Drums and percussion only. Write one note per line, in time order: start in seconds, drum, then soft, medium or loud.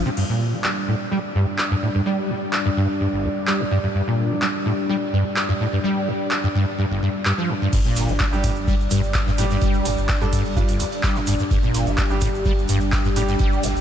0.05 shaker soft
0.17 crash medium
0.64 clap loud
1.58 clap loud
2.53 clap loud
3.47 clap loud
4.42 clap loud
5.36 clap loud
6.31 clap loud
7.25 clap loud
7.73 kick loud
7.73 closed hi-hat medium
7.73 crash loud
7.73 shaker medium
7.85 shaker soft
7.96 snare medium
7.96 closed hi-hat medium
7.96 open hi-hat loud
7.96 shaker medium
8.08 shaker soft
8.19 kick loud
8.19 snare loud
8.19 clap loud
8.19 closed hi-hat medium
8.19 shaker medium
8.33 snare soft
8.33 shaker soft
8.44 kick medium
8.44 closed hi-hat medium
8.44 open hi-hat loud
8.44 shaker medium
8.56 shaker soft
8.67 kick loud
8.67 closed hi-hat medium
8.67 shaker medium
8.80 shaker soft
8.90 closed hi-hat medium
8.90 open hi-hat loud
8.90 shaker medium
9.03 shaker soft
9.14 kick loud
9.14 snare loud
9.14 clap loud
9.14 closed hi-hat medium
9.14 shaker medium
9.27 snare medium
9.27 shaker soft
9.38 closed hi-hat medium
9.38 open hi-hat loud
9.38 shaker medium
9.50 snare soft
9.50 shaker soft
9.61 kick loud
9.61 closed hi-hat medium
9.61 shaker medium
9.74 shaker soft
9.85 closed hi-hat medium
9.85 open hi-hat loud
9.85 shaker medium
9.98 shaker soft
10.09 kick loud
10.09 snare loud
10.09 clap loud
10.09 closed hi-hat medium
10.09 shaker medium
10.21 shaker soft
10.33 kick medium
10.33 open hi-hat loud
10.33 open hi-hat medium
10.33 shaker medium
10.46 shaker soft
10.56 kick loud
10.56 closed hi-hat medium
10.56 shaker medium
10.68 open hi-hat medium
10.68 shaker soft
10.79 closed hi-hat medium
10.79 open hi-hat loud
10.79 shaker medium
10.92 closed hi-hat soft
10.92 shaker soft
11.03 kick loud
11.03 snare loud
11.03 clap loud
11.03 closed hi-hat loud
11.03 shaker medium
11.15 snare medium
11.15 shaker soft
11.27 closed hi-hat medium
11.27 open hi-hat loud
11.27 shaker loud
11.39 shaker soft
11.51 kick loud
11.51 closed hi-hat medium
11.51 shaker medium
11.63 shaker soft
11.74 snare medium
11.74 closed hi-hat medium
11.74 open hi-hat loud
11.74 shaker medium
11.87 shaker soft
11.98 kick loud
11.98 snare loud
11.98 clap loud
11.98 closed hi-hat medium
11.98 shaker medium
12.10 snare soft
12.10 shaker soft
12.21 kick medium
12.21 closed hi-hat medium
12.21 open hi-hat loud
12.21 shaker loud
12.34 shaker soft
12.45 kick loud
12.45 closed hi-hat medium
12.45 shaker medium
12.59 shaker soft
12.68 closed hi-hat medium
12.68 open hi-hat loud
12.68 shaker loud
12.81 shaker soft
12.92 kick loud
12.92 snare loud
12.92 clap loud
12.92 closed hi-hat medium
12.92 shaker soft
13.04 snare medium
13.04 shaker soft
13.16 closed hi-hat medium
13.16 open hi-hat loud
13.16 shaker loud
13.28 snare soft
13.28 shaker soft
13.39 kick loud
13.39 closed hi-hat loud
13.39 shaker medium
13.52 shaker soft
13.63 closed hi-hat medium
13.63 open hi-hat loud
13.63 shaker loud
13.76 shaker soft